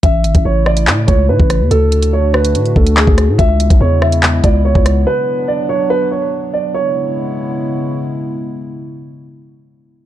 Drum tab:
HH |x-xx---x--x---x-|x-xx---xxx-x--x-|x-xx---x--x---x-|----------------|
CP |--------x-------|------------x---|--------x-------|----------------|
SD |------r-------r-|------r-------r-|------r-------r-|----------------|
BD |o--o------o--o--|----------o--o--|o--o------o--o--|----------------|

HH |----------------|----------------|
CP |----------------|----------------|
SD |----------------|----------------|
BD |----------------|----------------|